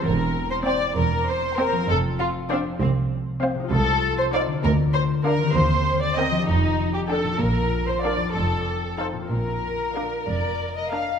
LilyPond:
<<
  \new Staff \with { instrumentName = "Violin section" } { \time 6/8 \key c \mixolydian \tempo 4. = 65 r4 g''8 r4 g''8 | r4 f''8 r4 f''8 | \key bes \major r4 f''8 r4 f''8 | r4 g''8 r4 g''8 |
r4 f''8 r4 f''8 | r4 f''8 d''8. ees''16 f''8 | }
  \new Staff \with { instrumentName = "Violin section" } { \time 6/8 \key c \mixolydian bes'8. c''16 d''8 bes'8 c''8 bes'8 | a'8 f'8 d'8 c'8 r4 | \key bes \major a'8. c''16 d''8 bes'8 c''8 bes'8 | c''8. d''16 ees''8 ees'8. g'16 a'8 |
bes'8. c''16 d''8 a'4 a'8 | bes'2~ bes'8 r8 | }
  \new Staff \with { instrumentName = "Viola section" } { \time 6/8 \key c \mixolydian r4 <c' c''>8 r4 <c' c''>8 | r4 <c' c''>8 r4 <c' c''>8 | \key bes \major r4 <ees' c''>8 r4 <d' bes'>8 | r4 <c' bes'>8 r4 <d' a'>8 |
r4 <d' bes'>8 r4 <ees' c''>8 | r4 <d' bes'>8 r4 <d' bes'>8 | }
  \new Staff \with { instrumentName = "Harp" } { \time 6/8 \key c \mixolydian <e c' g' c''>2. | <f c' f' c''>2. | \key bes \major <c ees' f' c''>4. <d d' f' bes'>4. | <ees c' g' bes'>4. <f d' g' a'>4. |
<bes, d' f' bes'>4. <f, ees' f' c''>4. | <bes, d' f' bes'>2. | }
  \new Staff \with { instrumentName = "Cello section" } { \clef bass \time 6/8 \key c \mixolydian e,4. e,4. | f,4. c,4. | \key bes \major c,4. d,4. | ees,4. f,4. |
bes,4. f,4. | bes,4. f,4. | }
  \new Staff \with { instrumentName = "Double bass section" } { \clef bass \time 6/8 \key c \mixolydian e,,4. e,,4. | f,,4. c,4. | \key bes \major c,4. d,4. | ees,4. f,,4. |
bes,,4. f,,4. | bes,,4. f,,4. | }
>>